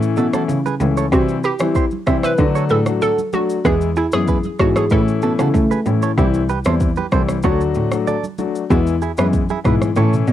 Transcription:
Already playing: cello A2, grand piano E3 A3 C#4 E4
0.03 shaker
0.17 cello B2, clean electric guitar F#4 A4, shaker
0.34 grand piano E3 A3 C#4 E4, clean electric guitar F#4 A4, cross-stick, high conga, shaker
0.49 cello C#3, low conga, shaker
0.66 clean electric guitar G#4 B4, high conga, shaker
0.80 cello C#2, grand piano E3 A3 C#4 E4, high conga, shaker
0.97 clean electric guitar A4 C#5, shaker
1.12 cello C3, grand piano E3 G3 C4 E4, synth pluck F#4, clean electric guitar G4 C5, kick, shaker
1.28 shaker
1.44 synth pluck G4, clean electric guitar G4 B4, shaker
1.59 cello E3, grand piano E3 G3 C4 E4, cross-stick, shaker
1.75 clean electric guitar G4 C5, kick, shaker
1.91 high conga, shaker
2.07 cello C3, grand piano E3 G3 C4 E4, clean electric guitar C5 E5, kick, cross-stick, low conga, shaker
2.23 synth pluck B4, clean electric guitar C5 E5, cross-stick, high conga, shaker
2.37 cello D3, grand piano F#3 A3 D4 F#4, kick, low conga, shaker
2.55 clean electric guitar A4 C#5, shaker
2.69 cello A2, clean electric guitar G#4 B4, synth pluck A4, shaker
2.86 grand piano F#3 A3 D4 F#4, cross-stick, high conga, shaker
3.02 clean electric guitar F#4 A4, synth pluck A4, low conga, shaker
3.18 high conga, shaker
3.33 grand piano F#3 A3 D4 F#4, synth pluck F#4, high conga, shaker
3.50 shaker
3.65 cello E2, grand piano E3 G#3 B3 E4, synth pluck G#4, clean electric guitar G#4 B4, kick, low conga, shaker
3.81 shaker
3.96 synth pluck E4, clean electric guitar E4 G#4, shaker
4.12 cello F#2, grand piano E3 G#3 B3 E4, synth pluck G#4, cross-stick, shaker
4.27 clean electric guitar G#4 B4, kick, shaker
4.43 high conga, shaker
4.59 cello G#2, grand piano E3 G#3 B3 E4, synth pluck F#4, clean electric guitar A4 C#5, kick, cross-stick, low conga, shaker
4.76 synth pluck G#4, clean electric guitar A4 C#5, cross-stick, high conga, shaker
4.90 cello A2, grand piano E3 A3 C#4 E4, clean electric guitar E4 B4, synth pluck A4, kick, low conga, shaker
5.08 shaker
5.22 cello B2, clean electric guitar F#4 A4, shaker
5.39 cello C#3, grand piano E3 A3 C#4 E4, clean electric guitar F#4 A4, cross-stick, high conga, shaker
5.54 cello A3, kick, low conga, shaker
5.71 clean electric guitar G#4 B4, high conga, shaker
5.86 cello A2, grand piano E3 A3 C#4 E4, high conga, shaker
6.02 clean electric guitar A4 C#5, shaker
6.17 cello C2, grand piano E3 G3 C4 E4, clean electric guitar E4 G4, kick, low conga, shaker
6.34 shaker
6.49 clean electric guitar G4 B4, shaker
6.64 cello E2, grand piano E3 G3 C4 E4, clean electric guitar A4 C5, cross-stick, shaker
6.80 kick, shaker
6.96 clean electric guitar G4 B4, high conga, shaker
7.12 cello C2, grand piano E3 G3 C4 E4, clean electric guitar A4 C5, kick, cross-stick, low conga, shaker
7.29 cross-stick, high conga, shaker
7.43 cello D2, grand piano F#3 A3 D4 F#4, clean electric guitar A4 C#5, kick, low conga, shaker
7.61 shaker
7.75 cello A2, shaker
7.92 grand piano F#3 A3 D4 F#4, cross-stick, high conga, shaker
8.07 clean electric guitar A4 D5, low conga, shaker
8.24 high conga, shaker
8.38 grand piano F#3 A3 D4 F#4, high conga, shaker
8.55 shaker
8.70 cello E2, grand piano E3 G#3 B3 E4, clean electric guitar B3 F#4, kick, low conga, shaker
8.87 shaker
9.02 clean electric guitar E4 G#4, shaker
9.17 cello F#2, grand piano E3 G#3 B3 E4, clean electric guitar G#4 B4, cross-stick, shaker
9.33 kick, shaker
9.49 clean electric guitar E4 G#4, high conga, shaker
9.65 cello G#2, grand piano E3 G#3 B3 E4, clean electric guitar G#4 B4, kick, cross-stick, mid tom, low conga, shaker
9.82 cross-stick, high conga, shaker
9.96 cello A2, grand piano E3 A3 C#4 E4, clean electric guitar A4 C#5, low conga, shaker
10.13 mid tom, shaker
10.27 cello B2, shaker

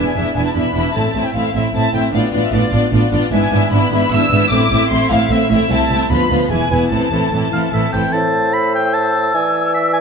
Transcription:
Already playing: viola section B3 D4, violin section E4 E5 G#5
0.16 double bass section E1, cello section E2, viola section B3 D4, violin section E4 E5
0.36 double bass section E1, cello section E2, viola section B3 D4, violin section E4 E5 G#5
0.46 violin section A5
0.55 double bass section E1, cello section E2, viola section B3 D4, violin section E4 E5 B5
0.74 double bass section E1, cello section E2, viola section B3 D4, violin section E4 E5
0.95 double bass section A1, cello section A2, viola section A3 C4, violin section E4 E5 A5
1.15 double bass section A1, cello section A2, viola section A3 C4, violin section E4 E5
1.26 violin section G5
1.35 double bass section A1, cello section A2, viola section A3 C4, violin section E4 E5 F5
1.55 double bass section A1, cello section A2, viola section A3 C4, violin section E4 E5
1.74 double bass section A1, cello section A2, viola section A3 C4, violin section E4 E5 A5
1.94 double bass section A1, cello section A2, viola section A3 C4, violin section E4 E5 G5
2.13 double bass section A1, cello section A2, viola section B3 D4, violin section F4 D5 F5
2.33 double bass section A1, cello section A2, viola section B3 D4, violin section F4 D5
2.43 violin section E5
2.52 double bass section A1, cello section A2, viola section B3 D4, violin section F4 D5
2.72 double bass section A1, cello section A2, viola section B3 D4, violin section F4 D5
2.92 double bass section A1, cello section A2, viola section B3 D4, violin section F4 D5
3.12 double bass section A1, cello section A2, viola section B3 D4, violin section F4 D5
3.32 double bass section G#1, cello section G#2, viola section B3 D4, violin section E4 E5 G#5
3.51 double bass section G#1, cello section G#2, viola section B3 D4, violin section E4 E5
3.71 double bass section G#1, cello section G#2, viola section B3 D4, violin section E4 E5 B5
3.92 double bass section G#1, cello section G#2, viola section B3 D4, violin section E4 E5
4.11 double bass section G#1, cello section G#2, viola section B3 D4, violin section E4 E5 E6
4.31 double bass section G#1, cello section G#2, viola section B3 D4, violin section E4 E5
4.50 double bass section A1, cello section A2, viola section A3 C4, violin section E4 E5 D6
4.71 double bass section A1, cello section A2, viola section A3 C4, violin section E4 E5
4.90 double bass section A1, cello section A2, viola section A3 C4, violin section E4 E5 C6
5.10 double bass section A1, cello section A2, viola section A3 C4, violin section E4 E5 F5
5.30 double bass section A1, cello section A2, viola section A3 C4, violin section E4 E5
5.49 double bass section A1, cello section A2, viola section A3 C4, violin section E4 E5
5.70 cello section C2, double bass section C2, viola section A3 C4, violin section E4 E5 A5
5.90 cello section C2, double bass section C2, viola section A3 C4, violin section E4 E5
6.10 cello section D2, double bass section D2, viola section F3 B3, violin section F4 B4 B5
6.30 cello section D2, double bass section D2, viola section F3 B3, violin section F4 B4
6.50 double bass section E1, cello section E2, viola section E3 B3, violin section E4 B4 G#5
6.70 double bass section E1, cello section E2, viola section E3 B3, violin section E4 B4
6.91 double bass section A1, cello section A2, viola section E3 C4, violin section E4 A4 A5
7.12 double bass section A1, cello section A2, viola section E3 C4, violin section E4 A4
7.32 double bass section A1, cello section A2, viola section E3 C4, violin section E4 A4
7.53 double bass section A1, cello section A2, viola section E3 C4, violin section E4 A4, oboe F5
7.73 double bass section A1, cello section A2, viola section E3 C4, violin section E4 A4, oboe E5
7.93 double bass section A1, cello section A2, viola section E3 C4, violin section E4 A4, oboe G5
8.13 bassoon A2, clarinet C5, oboe A5, flute E6
8.53 oboe B5
8.75 oboe G5
8.94 oboe A5
9.35 bassoon E3, clarinet D5, oboe G#5
9.74 oboe E5
9.93 oboe G#5

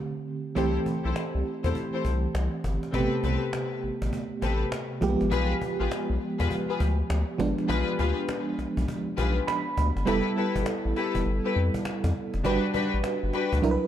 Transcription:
Already playing: fm electric piano D3 A3 C4 G4
0.55 analog synth bass C2, fm electric piano E3 A3 C4 G4, string section E4 G4 A4 C5, cajon bass
0.86 cajon bass
1.04 analog synth bass B1, string section E4 G4 A4 C5, cajon slap
1.16 cajon slap
1.35 analog synth bass C2
1.46 cajon slap
1.64 analog synth bass E2, string section E4 G4 A4 C5, cajon bass
1.75 cajon bass
1.93 string section E4 G4 A4 C5
2.05 analog synth bass C2, cajon bass
2.24 cajon slap
2.35 analog synth bass C2, cajon slap
2.64 analog synth bass G1, cajon bass
2.83 cajon slap
2.93 analog synth bass A1, fm electric piano B2 A3 B3 G4, string section C4 G4 A4 B4, cajon bass
2.99 fm electric piano C3
3.23 analog synth bass C2, string section C4 G4 A4 B4, cajon bass
3.42 cajon slap
3.53 cajon slap
3.83 analog synth bass A1, cajon slap
4.02 analog synth bass A1, cajon bass
4.13 cajon bass
4.42 analog synth bass A1, string section C4 G4 A4 B4, cajon bass
4.61 cajon slap
4.72 cajon slap
5.01 analog synth bass B1, fm electric piano F3 G#3 A#3 G4, cajon bass
5.09 fm electric piano B3
5.21 analog synth bass G#1, cajon slap
5.31 analog synth bass B1, string section F4 G4 G#4 B4, cajon bass
5.61 cajon bass
5.79 analog synth bass A1, string section F4 G4 G#4 B4, cajon slap
5.91 cajon slap
6.10 analog synth bass B1
6.21 cajon slap
6.39 analog synth bass E2, string section F4 G4 G#4 B4, cajon bass
6.51 cajon bass
6.69 string section F4 G4 G#4 B4
6.80 analog synth bass D2, cajon bass
6.99 cajon slap
7.10 analog synth bass D2, cajon slap
7.38 analog synth bass G#1, fm electric piano F3 G#3 B3 D4, cajon bass
7.58 cajon slap
7.68 analog synth bass B1, string section F4 G4 G#4 B4, cajon bass
7.98 analog synth bass D2, string section F4 G4 G#4 B4, cajon bass
8.18 cajon slap
8.29 cajon slap
8.58 analog synth bass B1, cajon slap
8.77 analog synth bass B1, cajon bass
8.88 cajon bass
9.17 analog synth bass B1, string section F4 G4 G#4 B4, cajon bass
9.37 cajon slap
9.47 fm electric piano B5, cajon slap
9.77 analog synth bass D2, cajon bass
9.96 analog synth bass G1, cajon slap
10.06 analog synth bass F1, fm electric piano G3 B3 E4 A4, string section E4 G4 A4 B4, cajon bass
10.26 cajon slap
10.37 string section E4 G4 A4 B4, cajon slap
10.56 analog synth bass G1, cajon bass
10.66 cajon slap
10.85 analog synth bass A1, cajon slap
10.96 string section E4 G4 A4 B4, cajon slap
11.15 analog synth bass F1, cajon bass
11.26 analog synth bass G1, cajon slap
11.45 string section E4 G4 A4 B4, cajon slap
11.56 analog synth bass F2, cajon slap
11.74 cajon bass
11.85 cajon slap
12.04 analog synth bass F2, cajon bass
12.34 analog synth bass F1, cajon slap
12.44 analog synth bass G1, fm electric piano G3 D4 F#4 B4, string section D4 F#4 G4 B4, cajon bass
12.64 cajon slap
12.74 string section D4 F#4 G4 B4, cajon bass
12.93 analog synth bass A1, cajon slap
13.04 cajon slap
13.23 analog synth bass G1, cajon slap
13.33 string section D4 F#4 G4 B4, cajon slap
13.52 analog synth bass D2, cajon bass
13.62 analog synth bass C2, fm electric piano F#3 D4 E4 A#4, cajon bass
13.71 fm electric piano B4
13.83 cajon slap

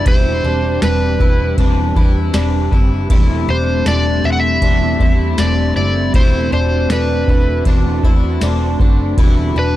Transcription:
Already playing: ambient pad E3 D4 G4
0.05 picked electric bass E1, clean electric guitar E2 E3 G3 C4 G4, ambient pad C4, twelve-string acoustic guitar E4, electric slide guitar C5, kick, ride
0.44 picked electric bass E1, clean electric guitar G3 C4 G4, twelve-string acoustic guitar D4
0.81 picked electric bass E1, clean electric guitar G3 C4 G4, twelve-string acoustic guitar D4, electric slide guitar B4, snare, ride, tambourine
0.85 clean electric guitar B4
1.19 picked electric bass E1, clean electric guitar C4 G4 B4, twelve-string acoustic guitar E4, kick
1.23 clean electric guitar G3
1.57 picked electric bass E1, clean electric guitar E2 E3 G3 C4 G4 B4, twelve-string acoustic guitar D4, kick, ride
1.94 picked electric bass E2, clean electric guitar C4 G4 B4, twelve-string acoustic guitar E4, kick
1.99 clean electric guitar G3
2.33 picked electric bass E1, clean electric guitar G3 C4 G4, twelve-string acoustic guitar D4, snare, ride, tambourine
2.37 clean electric guitar B4
2.71 picked electric bass F#1, clean electric guitar C4 G4 B4, twelve-string acoustic guitar E4, kick
2.76 clean electric guitar G3
3.09 picked electric bass E1, clean electric guitar E2 E3 G3 A3 E4 C5, ambient pad A3, twelve-string acoustic guitar E4, kick, ride
3.46 picked electric bass E1, clean electric guitar G3 E4 C5, twelve-string acoustic guitar D4
3.50 clean electric guitar A3, electric slide guitar C5
3.85 picked electric bass E1, clean electric guitar G3 A3 E4, twelve-string acoustic guitar D4, electric slide guitar D5, snare, ride, tambourine
3.89 clean electric guitar C5
4.22 picked electric bass E1, clean electric guitar G3 E4 C5, twelve-string acoustic guitar E4, electric slide guitar E5
4.27 clean electric guitar A3
4.32 electric slide guitar F#5
4.40 electric slide guitar E5
4.60 picked electric bass E1, clean electric guitar E2 E3 G3 A3 E4 C5, twelve-string acoustic guitar D4, kick, ride
4.98 picked electric bass E2, clean electric guitar G3 E4 C5, twelve-string acoustic guitar E4, kick
5.03 clean electric guitar A3
5.37 picked electric bass E1, clean electric guitar G3 A3 E4, twelve-string acoustic guitar D4, electric slide guitar D5, snare, ride, tambourine
5.41 clean electric guitar C5
5.74 picked electric bass F#1, clean electric guitar G3 E4 C5, twelve-string acoustic guitar E4, electric slide guitar D5
5.79 clean electric guitar A3
6.13 picked electric bass E1, clean electric guitar E2 E3 A3 D4 F#4 C5, ambient pad D4 F#4, twelve-string acoustic guitar E4, electric slide guitar C5, kick, ride
6.50 picked electric bass E1, twelve-string acoustic guitar D4, clean electric guitar D4 F#4 C5, electric slide guitar C5
6.55 clean electric guitar A3
6.88 picked electric bass E1, clean electric guitar A3 D4 F#4, twelve-string acoustic guitar D4, snare, ride, tambourine
6.92 electric slide guitar B4
7.28 picked electric bass E1, clean electric guitar A3 D4 F#4, twelve-string acoustic guitar E4, kick
7.64 picked electric bass E1, clean electric guitar E2 E3 A3 D4 F#4 C5, twelve-string acoustic guitar D4, kick, ride
8.02 picked electric bass E2, clean electric guitar D4 F#4 C5, twelve-string acoustic guitar E4, kick
8.07 clean electric guitar A3
8.40 picked electric bass E1, clean electric guitar A3 D4 F#4, twelve-string acoustic guitar D4, snare, ride, tambourine
8.45 clean electric guitar C5
8.78 picked electric bass F#1, twelve-string acoustic guitar D4, clean electric guitar D4 F#4 C5, kick
8.83 clean electric guitar A3
9.17 picked electric bass E1, clean electric guitar D3 E3 G3 B3 B4, ambient pad E3 B3 G4, twelve-string acoustic guitar E4, kick, ride
9.54 picked electric bass E1, clean electric guitar B3 B4, twelve-string acoustic guitar D4
9.59 clean electric guitar G3, electric slide guitar B4

